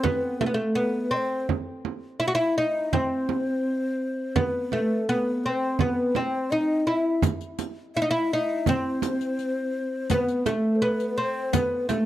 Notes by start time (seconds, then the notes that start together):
0.04 B3 B4, frame drum
0.41 A3, frame drum
0.46 B3
0.54 A3
0.75 B3 B4
1.11 C4 D#5
1.17 C5
1.49 frame drum
1.85 frame drum
2.20 E4 E5
2.28 F#4
2.35 E4 E5
2.58 D#4 D#5
2.93 C4 C5, frame drum
3.29 frame drum
4.36 B3 B4, frame drum
4.72 A3, frame drum
5.08 B3 B4
5.44 C4 C5
5.79 B3 B4, frame drum
6.15 C4 D#5, frame drum
6.20 C5
6.51 D#4 D#5
6.87 E4 E5
7.22 riq, frame drum
7.41 riq
7.59 riq, frame drum
7.95 E4 E5
8.02 D#4
8.10 E4 E5
8.33 D#4
8.66 C4 D#5, riq, frame drum
8.71 C5
9.02 riq, frame drum
9.21 riq
9.39 riq
10.10 B3 B4, riq, frame drum
10.28 riq
10.46 A3 A4, riq, frame drum
10.76 C5
10.81 B3 C5
10.86 B4
11.00 riq
11.18 C4 C5
11.53 B3 B4, riq, frame drum
11.89 A3 A4, riq, frame drum